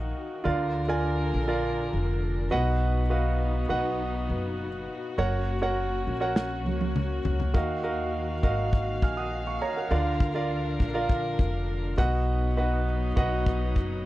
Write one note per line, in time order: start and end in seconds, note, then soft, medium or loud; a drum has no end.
0.00 0.11 A#1 medium
0.00 0.43 D#3 medium
0.00 0.47 D#3 medium
0.00 0.43 D#4 medium
0.00 0.43 F#4 medium
0.00 0.47 F#4 medium
0.00 0.45 A#4 medium
0.00 0.47 D#5 medium
0.00 0.45 F5 medium
0.00 0.47 F#5 medium
0.44 1.30 D2 medium
0.44 2.50 D3 medium
0.44 1.30 D3 medium
0.44 2.50 D4 medium
0.44 0.81 F4 medium
0.44 2.50 A#4 medium
0.44 0.82 A#4 medium
0.44 0.82 D5 medium
0.44 0.82 F5 medium
0.88 1.38 F4 medium
0.88 1.38 A#4 medium
0.88 1.38 D5 medium
0.88 1.38 G#5 medium
1.34 1.89 A#1 medium
1.48 2.46 F4 medium
1.48 2.46 A#4 medium
1.48 2.46 D5 medium
1.48 2.47 F5 medium
1.93 2.48 F1 medium
2.51 3.66 B1 medium
2.51 3.36 B2 medium
2.51 5.15 B3 medium
2.51 5.15 D#4 medium
2.51 3.00 F#4 medium
2.51 9.87 F#4 medium
2.51 3.00 B4 medium
2.51 3.01 D#5 medium
2.51 3.01 F#5 medium
3.10 3.60 F#4 medium
3.10 3.60 B4 medium
3.10 3.60 D#5 medium
3.10 3.60 F5 medium
3.69 4.25 B1 medium
3.69 4.67 F#4 medium
3.69 4.68 B4 medium
3.69 4.68 D#5 medium
3.69 4.68 F#5 medium
4.29 4.85 F#1 medium
5.18 6.03 F#1 medium
5.18 9.87 A#3 medium
5.18 7.52 C#4 medium
5.18 5.55 F#4 medium
5.18 5.55 A#4 medium
5.18 5.55 C#5 medium
5.18 5.55 F#5 medium
5.62 6.11 F#4 medium
5.62 6.11 A#4 medium
5.62 6.11 C#5 medium
5.62 6.12 F#5 medium
6.07 6.66 A#1 medium
6.20 7.19 F#4 medium
6.20 7.19 A#4 medium
6.20 7.19 C#5 medium
6.20 7.20 F#5 medium
6.36 snare soft
6.66 7.21 C#2 medium
6.66 high tom medium
6.81 high tom soft
6.96 mid tom medium
7.25 7.53 C#2 medium
7.25 floor tom medium
7.40 floor tom medium
7.54 8.39 D#2 medium
7.54 8.39 D#3 medium
7.54 9.89 D#3 medium
7.54 7.79 F#4 medium
7.54 7.79 A#4 medium
7.54 7.79 D#5 medium
7.54 7.79 F5 medium
7.54 11.95 F5 medium
7.54 kick medium
7.83 8.33 F#4 medium
7.83 8.33 A#4 medium
7.83 8.33 D#5 medium
7.83 8.33 F5 medium
8.43 8.99 G#1 medium
8.43 9.41 F#4 medium
8.43 9.03 A#4 medium
8.43 9.03 D#5 medium
8.43 9.03 F5 medium
8.43 kick medium
8.73 kick medium
9.02 9.58 A#1 medium
9.02 9.17 G#5 soft
9.02 9.17 F6 soft
9.02 kick medium
9.17 9.45 F#5 soft
9.17 9.45 D#6 medium
9.47 9.61 F5 soft
9.47 9.61 C#6 soft
9.62 9.76 C#5 medium
9.62 9.76 A#5 medium
9.76 9.90 A#4 soft
9.76 10.04 F#5 soft
9.91 10.76 D2 medium
9.91 11.96 D3 medium
9.91 10.76 D3 medium
9.91 11.96 D4 medium
9.91 10.28 F4 medium
9.91 10.28 A#4 medium
9.91 11.96 A#4 medium
9.91 10.28 D5 medium
9.91 10.28 F5 medium
10.20 kick medium
10.34 10.84 F4 medium
10.34 10.84 A#4 medium
10.34 10.85 D5 medium
10.34 10.85 F5 medium
10.80 11.35 A#1 medium
10.80 kick medium
10.94 11.92 F4 medium
10.94 11.93 A#4 medium
10.94 11.93 D5 medium
10.94 11.93 F5 medium
11.09 kick medium
11.39 11.94 F1 medium
11.39 kick medium
11.98 13.13 B1 medium
11.98 12.83 B2 medium
11.98 14.06 F#3 medium
11.98 14.06 B3 medium
11.98 14.06 D#4 medium
11.98 12.47 F#4 medium
11.98 12.47 B4 medium
11.98 12.47 D#5 medium
11.98 12.48 F#5 medium
11.98 kick medium
12.57 13.06 F#4 medium
12.57 13.07 B4 medium
12.57 13.07 D#5 medium
12.57 13.07 F#5 medium
13.16 13.72 B1 medium
13.16 14.06 F#4 medium
13.16 14.06 B4 medium
13.16 14.06 D#5 medium
13.16 14.06 F#5 medium
13.16 kick medium
13.46 kick medium
13.76 14.06 F#1 medium
13.76 kick medium